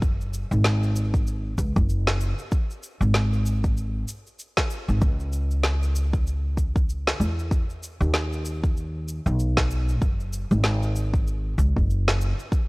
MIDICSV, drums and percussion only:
0, 0, Header, 1, 2, 480
1, 0, Start_track
1, 0, Tempo, 625000
1, 14, Time_signature, 4, 2, 24, 8
1, 9741, End_track
2, 0, Start_track
2, 0, Title_t, "Drums"
2, 15, Note_on_c, 9, 36, 127
2, 17, Note_on_c, 9, 82, 47
2, 92, Note_off_c, 9, 36, 0
2, 94, Note_off_c, 9, 82, 0
2, 160, Note_on_c, 9, 82, 31
2, 236, Note_off_c, 9, 82, 0
2, 258, Note_on_c, 9, 82, 87
2, 335, Note_off_c, 9, 82, 0
2, 397, Note_on_c, 9, 82, 36
2, 474, Note_off_c, 9, 82, 0
2, 495, Note_on_c, 9, 38, 80
2, 499, Note_on_c, 9, 82, 44
2, 572, Note_off_c, 9, 38, 0
2, 576, Note_off_c, 9, 82, 0
2, 640, Note_on_c, 9, 82, 32
2, 717, Note_off_c, 9, 82, 0
2, 739, Note_on_c, 9, 82, 79
2, 815, Note_off_c, 9, 82, 0
2, 876, Note_on_c, 9, 36, 115
2, 881, Note_on_c, 9, 82, 34
2, 953, Note_off_c, 9, 36, 0
2, 958, Note_off_c, 9, 82, 0
2, 978, Note_on_c, 9, 82, 49
2, 1055, Note_off_c, 9, 82, 0
2, 1215, Note_on_c, 9, 36, 66
2, 1216, Note_on_c, 9, 82, 75
2, 1292, Note_off_c, 9, 36, 0
2, 1293, Note_off_c, 9, 82, 0
2, 1355, Note_on_c, 9, 36, 113
2, 1357, Note_on_c, 9, 82, 35
2, 1432, Note_off_c, 9, 36, 0
2, 1434, Note_off_c, 9, 82, 0
2, 1456, Note_on_c, 9, 82, 47
2, 1533, Note_off_c, 9, 82, 0
2, 1593, Note_on_c, 9, 38, 80
2, 1669, Note_off_c, 9, 38, 0
2, 1695, Note_on_c, 9, 82, 81
2, 1772, Note_off_c, 9, 82, 0
2, 1834, Note_on_c, 9, 82, 34
2, 1910, Note_off_c, 9, 82, 0
2, 1934, Note_on_c, 9, 36, 125
2, 1934, Note_on_c, 9, 82, 49
2, 2011, Note_off_c, 9, 36, 0
2, 2011, Note_off_c, 9, 82, 0
2, 2077, Note_on_c, 9, 82, 32
2, 2154, Note_off_c, 9, 82, 0
2, 2174, Note_on_c, 9, 82, 83
2, 2251, Note_off_c, 9, 82, 0
2, 2317, Note_on_c, 9, 82, 34
2, 2394, Note_off_c, 9, 82, 0
2, 2413, Note_on_c, 9, 38, 72
2, 2416, Note_on_c, 9, 82, 43
2, 2489, Note_off_c, 9, 38, 0
2, 2493, Note_off_c, 9, 82, 0
2, 2557, Note_on_c, 9, 82, 32
2, 2634, Note_off_c, 9, 82, 0
2, 2655, Note_on_c, 9, 82, 88
2, 2732, Note_off_c, 9, 82, 0
2, 2794, Note_on_c, 9, 36, 105
2, 2794, Note_on_c, 9, 82, 33
2, 2871, Note_off_c, 9, 36, 0
2, 2871, Note_off_c, 9, 82, 0
2, 2896, Note_on_c, 9, 82, 44
2, 2973, Note_off_c, 9, 82, 0
2, 3134, Note_on_c, 9, 82, 83
2, 3211, Note_off_c, 9, 82, 0
2, 3277, Note_on_c, 9, 82, 34
2, 3354, Note_off_c, 9, 82, 0
2, 3373, Note_on_c, 9, 82, 49
2, 3450, Note_off_c, 9, 82, 0
2, 3509, Note_on_c, 9, 38, 83
2, 3512, Note_on_c, 9, 36, 113
2, 3513, Note_on_c, 9, 82, 31
2, 3586, Note_off_c, 9, 38, 0
2, 3589, Note_off_c, 9, 36, 0
2, 3590, Note_off_c, 9, 82, 0
2, 3611, Note_on_c, 9, 82, 87
2, 3688, Note_off_c, 9, 82, 0
2, 3753, Note_on_c, 9, 82, 35
2, 3830, Note_off_c, 9, 82, 0
2, 3851, Note_on_c, 9, 82, 44
2, 3852, Note_on_c, 9, 36, 125
2, 3928, Note_off_c, 9, 82, 0
2, 3929, Note_off_c, 9, 36, 0
2, 3993, Note_on_c, 9, 82, 31
2, 4070, Note_off_c, 9, 82, 0
2, 4090, Note_on_c, 9, 82, 78
2, 4167, Note_off_c, 9, 82, 0
2, 4231, Note_on_c, 9, 82, 35
2, 4308, Note_off_c, 9, 82, 0
2, 4327, Note_on_c, 9, 38, 73
2, 4331, Note_on_c, 9, 82, 42
2, 4404, Note_off_c, 9, 38, 0
2, 4408, Note_off_c, 9, 82, 0
2, 4476, Note_on_c, 9, 82, 30
2, 4553, Note_off_c, 9, 82, 0
2, 4574, Note_on_c, 9, 82, 79
2, 4651, Note_off_c, 9, 82, 0
2, 4711, Note_on_c, 9, 36, 108
2, 4715, Note_on_c, 9, 82, 33
2, 4788, Note_off_c, 9, 36, 0
2, 4792, Note_off_c, 9, 82, 0
2, 4817, Note_on_c, 9, 82, 43
2, 4893, Note_off_c, 9, 82, 0
2, 5050, Note_on_c, 9, 36, 67
2, 5055, Note_on_c, 9, 82, 75
2, 5127, Note_off_c, 9, 36, 0
2, 5132, Note_off_c, 9, 82, 0
2, 5192, Note_on_c, 9, 36, 110
2, 5197, Note_on_c, 9, 82, 32
2, 5268, Note_off_c, 9, 36, 0
2, 5274, Note_off_c, 9, 82, 0
2, 5297, Note_on_c, 9, 82, 47
2, 5374, Note_off_c, 9, 82, 0
2, 5434, Note_on_c, 9, 38, 79
2, 5511, Note_off_c, 9, 38, 0
2, 5538, Note_on_c, 9, 82, 79
2, 5614, Note_off_c, 9, 82, 0
2, 5679, Note_on_c, 9, 82, 31
2, 5755, Note_off_c, 9, 82, 0
2, 5771, Note_on_c, 9, 36, 117
2, 5777, Note_on_c, 9, 82, 45
2, 5848, Note_off_c, 9, 36, 0
2, 5853, Note_off_c, 9, 82, 0
2, 5916, Note_on_c, 9, 82, 31
2, 5992, Note_off_c, 9, 82, 0
2, 6016, Note_on_c, 9, 82, 70
2, 6093, Note_off_c, 9, 82, 0
2, 6156, Note_on_c, 9, 82, 33
2, 6232, Note_off_c, 9, 82, 0
2, 6250, Note_on_c, 9, 38, 73
2, 6254, Note_on_c, 9, 82, 40
2, 6327, Note_off_c, 9, 38, 0
2, 6331, Note_off_c, 9, 82, 0
2, 6395, Note_on_c, 9, 82, 28
2, 6472, Note_off_c, 9, 82, 0
2, 6492, Note_on_c, 9, 82, 75
2, 6569, Note_off_c, 9, 82, 0
2, 6631, Note_on_c, 9, 36, 106
2, 6635, Note_on_c, 9, 82, 32
2, 6708, Note_off_c, 9, 36, 0
2, 6712, Note_off_c, 9, 82, 0
2, 6735, Note_on_c, 9, 82, 43
2, 6812, Note_off_c, 9, 82, 0
2, 6976, Note_on_c, 9, 82, 77
2, 7053, Note_off_c, 9, 82, 0
2, 7116, Note_on_c, 9, 82, 32
2, 7192, Note_off_c, 9, 82, 0
2, 7216, Note_on_c, 9, 82, 44
2, 7293, Note_off_c, 9, 82, 0
2, 7350, Note_on_c, 9, 38, 79
2, 7352, Note_on_c, 9, 36, 112
2, 7427, Note_off_c, 9, 38, 0
2, 7428, Note_off_c, 9, 36, 0
2, 7455, Note_on_c, 9, 82, 83
2, 7531, Note_off_c, 9, 82, 0
2, 7593, Note_on_c, 9, 82, 32
2, 7670, Note_off_c, 9, 82, 0
2, 7692, Note_on_c, 9, 36, 116
2, 7693, Note_on_c, 9, 82, 43
2, 7769, Note_off_c, 9, 36, 0
2, 7770, Note_off_c, 9, 82, 0
2, 7834, Note_on_c, 9, 82, 28
2, 7911, Note_off_c, 9, 82, 0
2, 7933, Note_on_c, 9, 82, 74
2, 8009, Note_off_c, 9, 82, 0
2, 8075, Note_on_c, 9, 82, 32
2, 8152, Note_off_c, 9, 82, 0
2, 8170, Note_on_c, 9, 38, 75
2, 8174, Note_on_c, 9, 82, 40
2, 8247, Note_off_c, 9, 38, 0
2, 8250, Note_off_c, 9, 82, 0
2, 8316, Note_on_c, 9, 82, 29
2, 8393, Note_off_c, 9, 82, 0
2, 8417, Note_on_c, 9, 82, 79
2, 8494, Note_off_c, 9, 82, 0
2, 8554, Note_on_c, 9, 36, 107
2, 8560, Note_on_c, 9, 82, 31
2, 8630, Note_off_c, 9, 36, 0
2, 8636, Note_off_c, 9, 82, 0
2, 8660, Note_on_c, 9, 82, 45
2, 8737, Note_off_c, 9, 82, 0
2, 8894, Note_on_c, 9, 36, 60
2, 8898, Note_on_c, 9, 82, 76
2, 8970, Note_off_c, 9, 36, 0
2, 8974, Note_off_c, 9, 82, 0
2, 9034, Note_on_c, 9, 36, 103
2, 9041, Note_on_c, 9, 82, 31
2, 9111, Note_off_c, 9, 36, 0
2, 9118, Note_off_c, 9, 82, 0
2, 9140, Note_on_c, 9, 82, 42
2, 9217, Note_off_c, 9, 82, 0
2, 9276, Note_on_c, 9, 38, 82
2, 9353, Note_off_c, 9, 38, 0
2, 9378, Note_on_c, 9, 82, 77
2, 9455, Note_off_c, 9, 82, 0
2, 9518, Note_on_c, 9, 82, 33
2, 9595, Note_off_c, 9, 82, 0
2, 9614, Note_on_c, 9, 36, 120
2, 9619, Note_on_c, 9, 82, 44
2, 9691, Note_off_c, 9, 36, 0
2, 9695, Note_off_c, 9, 82, 0
2, 9741, End_track
0, 0, End_of_file